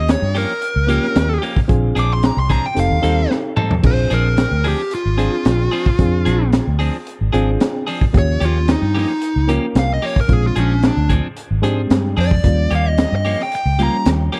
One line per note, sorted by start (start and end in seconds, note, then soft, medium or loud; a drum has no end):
0.00 0.15 D#2 medium
0.00 0.21 A#3 medium
0.00 0.21 C#4 medium
0.00 0.21 F4 medium
0.00 0.22 G4 medium
0.08 0.36 C#5 medium
0.08 snare loud
0.08 closed hi-hat medium
0.22 0.44 G2 loud
0.35 0.53 F3 medium
0.35 0.52 A#3 medium
0.35 0.52 C#4 medium
0.35 0.52 G4 medium
0.35 1.41 A#4 loud
0.35 open hi-hat medium
0.62 closed hi-hat medium
0.76 0.98 C#2 medium
0.87 1.06 F3 soft
0.87 1.37 A#3 medium
0.87 1.06 A#3 medium
0.87 1.38 C#4 medium
0.87 1.06 C#4 medium
0.87 1.38 F4 medium
0.87 1.05 G4 medium
0.87 1.38 G4 medium
0.87 closed hi-hat medium
1.04 snare soft
1.16 1.38 D#2 medium
1.16 snare loud
1.16 closed hi-hat medium
1.42 1.60 F3 medium
1.42 1.59 A#3 medium
1.42 1.59 C#4 medium
1.42 1.59 G4 medium
1.42 open hi-hat medium
1.56 kick medium
1.68 1.91 A#1 medium
1.68 2.35 C4 medium
1.68 2.35 D4 medium
1.68 2.35 F4 medium
1.68 2.36 G#4 loud
1.68 kick loud
1.68 closed hi-hat medium
1.95 2.29 A#1 medium
1.95 2.13 F3 medium
1.95 2.13 C4 medium
1.95 2.13 D4 medium
1.95 2.12 G#4 medium
1.95 2.11 D6 medium
1.95 snare soft
1.95 closed hi-hat medium
2.13 2.25 C6 medium
2.23 2.38 A#5 medium
2.23 snare loud
2.23 closed hi-hat medium
2.37 2.59 C2 loud
2.37 2.51 C6 medium
2.50 2.67 F3 medium
2.50 2.67 C4 medium
2.50 2.66 D4 medium
2.50 2.66 G#4 medium
2.50 2.66 A#5 medium
2.50 kick medium
2.50 closed hi-hat medium
2.66 2.77 G5 medium
2.75 2.92 F1 medium
2.75 2.97 C4 medium
2.75 2.98 D#4 medium
2.75 2.98 G4 medium
2.75 2.98 A4 medium
2.75 closed hi-hat medium
2.80 3.30 F5 loud
2.91 3.01 D#2 medium
3.02 3.25 D#2 loud
3.02 3.21 G3 medium
3.02 3.52 C4 medium
3.02 3.20 C4 medium
3.02 3.52 D#4 medium
3.02 3.20 D#4 medium
3.02 3.53 G4 medium
3.02 3.20 A4 medium
3.02 3.53 A4 medium
3.02 closed hi-hat medium
3.31 snare medium
3.56 3.75 G3 medium
3.56 3.74 C4 medium
3.56 3.74 D#4 medium
3.56 3.73 A4 medium
3.56 mid tom medium
3.71 floor tom medium
3.83 4.06 A#1 medium
3.83 4.50 C4 medium
3.83 4.50 D4 medium
3.83 4.50 F4 medium
3.83 4.50 G#4 medium
3.83 4.11 C5 medium
3.83 kick loud
3.83 crash loud
4.10 4.44 A#1 medium
4.10 4.28 F3 medium
4.10 4.28 C4 medium
4.10 4.28 D4 medium
4.10 4.27 G#4 medium
4.10 4.64 A#4 medium
4.10 closed hi-hat medium
4.37 snare loud
4.37 closed hi-hat medium
4.51 4.73 D2 medium
4.64 4.82 F3 medium
4.64 4.82 C4 medium
4.64 4.81 D4 medium
4.64 4.92 G4 medium
4.64 4.81 G#4 medium
4.64 open hi-hat medium
4.91 6.50 F4 medium
4.91 closed hi-hat medium
5.06 5.27 G#1 medium
5.17 5.36 F3 soft
5.17 5.67 C4 medium
5.17 5.35 C4 medium
5.17 5.68 D4 medium
5.17 5.35 D4 medium
5.17 5.68 F4 medium
5.17 5.35 G#4 medium
5.17 5.68 G#4 medium
5.17 closed hi-hat medium
5.45 5.67 A#1 medium
5.45 snare loud
5.45 closed hi-hat medium
5.71 5.89 F3 medium
5.71 5.89 C4 medium
5.71 5.89 D4 medium
5.71 5.88 G#4 medium
5.71 open hi-hat medium
5.86 kick medium
5.99 6.28 F2 medium
5.99 6.65 C4 medium
5.99 6.66 D4 medium
5.99 6.66 F4 medium
5.99 6.66 G#4 medium
5.99 kick loud
5.99 closed hi-hat medium
6.25 6.59 A#1 medium
6.25 6.43 F3 medium
6.25 6.43 C4 medium
6.25 6.43 D4 medium
6.25 6.42 G#4 medium
6.25 closed hi-hat medium
6.53 snare loud
6.53 closed hi-hat medium
6.67 6.89 D2 medium
6.79 6.97 F3 medium
6.79 6.97 C4 medium
6.79 6.96 D4 medium
6.79 6.96 G#4 medium
6.79 open hi-hat medium
7.07 closed hi-hat medium
7.21 7.31 G#1 medium
7.33 7.56 G#1 medium
7.33 7.51 F3 medium
7.33 7.83 C4 medium
7.33 7.50 C4 medium
7.33 7.50 D4 medium
7.33 7.83 D4 medium
7.33 7.83 F4 medium
7.33 7.50 G#4 medium
7.33 7.84 G#4 loud
7.33 closed hi-hat soft
7.60 snare loud
7.60 closed hi-hat medium
7.87 8.05 F3 medium
7.87 8.04 C4 medium
7.87 8.04 D4 medium
7.87 8.04 G#4 medium
7.87 open hi-hat medium
8.01 kick medium
8.13 8.36 D#2 medium
8.13 8.80 A#3 medium
8.13 8.81 C#4 medium
8.13 8.81 F4 medium
8.13 8.81 G4 medium
8.13 kick loud
8.13 closed hi-hat medium
8.18 8.43 C#5 medium
8.40 8.75 D#2 medium
8.40 8.58 F3 medium
8.40 8.58 A#3 medium
8.40 8.58 C#4 medium
8.40 8.57 G4 medium
8.40 closed hi-hat medium
8.45 8.69 F4 medium
8.68 8.96 D#4 medium
8.68 snare loud
8.68 closed hi-hat medium
8.82 9.04 G2 medium
8.95 9.12 F3 medium
8.95 9.12 A#3 medium
8.95 9.12 C#4 medium
8.95 9.11 G4 medium
8.95 open hi-hat medium
8.99 9.49 D#4 medium
9.22 closed hi-hat medium
9.36 9.58 C#2 medium
9.48 9.66 F3 soft
9.48 9.98 A#3 medium
9.48 9.66 A#3 medium
9.48 9.98 C#4 medium
9.48 9.66 C#4 medium
9.48 9.98 F4 medium
9.48 9.65 G4 medium
9.48 9.99 A#4 medium
9.48 closed hi-hat medium
9.75 9.97 C2 medium
9.75 9.91 F5 medium
9.75 snare loud
9.75 closed hi-hat medium
9.94 10.04 D#5 medium
10.02 10.20 F3 medium
10.02 10.20 A#3 medium
10.02 10.19 C#4 medium
10.02 10.19 G4 medium
10.02 10.18 C#5 medium
10.02 open hi-hat medium
10.16 kick medium
10.21 10.31 A#4 medium
10.28 10.51 A#1 medium
10.28 10.95 G#3 medium
10.28 10.96 C4 medium
10.28 10.96 D4 medium
10.28 10.96 F4 medium
10.28 kick loud
10.28 closed hi-hat medium
10.33 10.45 G#4 medium
10.47 10.58 F4 medium
10.56 10.90 A#1 medium
10.56 10.74 F3 soft
10.56 10.73 C4 medium
10.56 10.84 C#4 medium
10.56 10.73 D4 medium
10.56 10.73 G#4 medium
10.56 closed hi-hat medium
10.83 snare loud
10.83 closed hi-hat medium
10.87 11.11 D4 medium
10.97 11.19 D2 medium
11.09 11.27 F3 medium
11.09 11.27 C4 medium
11.09 11.27 D4 medium
11.09 11.26 G#4 medium
11.09 kick medium
11.09 closed hi-hat medium
11.37 closed hi-hat medium
11.51 11.61 G#1 medium
11.62 11.88 G#2 medium
11.62 11.81 F3 medium
11.62 12.13 G#3 medium
11.62 12.13 C4 medium
11.62 11.81 C4 medium
11.62 12.13 D4 medium
11.62 11.81 D4 medium
11.62 12.14 G4 medium
11.62 11.80 G#4 medium
11.62 closed hi-hat medium
11.90 12.15 G2 medium
11.90 snare loud
11.90 closed hi-hat medium
12.17 12.42 F2 medium
12.17 12.35 F3 medium
12.17 12.35 C4 medium
12.17 12.34 D4 medium
12.17 12.34 G#4 medium
12.17 12.71 D5 medium
12.17 open hi-hat medium
12.31 kick medium
12.44 12.66 D#2 medium
12.44 13.11 G3 medium
12.44 13.11 A#3 medium
12.44 13.11 C#4 medium
12.44 13.11 F4 medium
12.44 kick loud
12.44 closed hi-hat medium
12.71 13.05 D#2 medium
12.71 12.89 F3 medium
12.71 12.88 A#3 medium
12.71 12.88 C#4 medium
12.71 12.88 G4 medium
12.71 closed hi-hat medium
12.75 12.89 F5 medium
12.89 13.13 D#5 medium
12.98 snare loud
12.98 closed hi-hat medium
13.12 13.34 G2 loud
13.12 13.40 D#5 medium
13.25 13.43 F3 medium
13.25 13.42 A#3 medium
13.25 13.42 C#4 medium
13.25 13.42 G4 medium
13.25 open hi-hat medium
13.40 13.54 G5 medium
13.40 snare soft
13.52 13.80 G5 medium
13.52 closed hi-hat medium
13.66 13.88 C#2 medium
13.78 13.97 F3 medium
13.78 14.28 G3 medium
13.78 14.29 A#3 medium
13.78 13.96 A#3 soft
13.78 14.29 C#4 medium
13.78 13.96 C#4 medium
13.78 14.29 F4 medium
13.78 13.96 G4 medium
13.78 closed hi-hat medium
13.83 14.07 A#5 medium
14.06 14.28 D#2 medium
14.06 snare loud
14.06 closed hi-hat medium
14.32 14.40 F3 medium
14.32 14.40 A#3 medium
14.32 14.40 C#4 medium
14.32 14.40 G4 medium
14.32 open hi-hat medium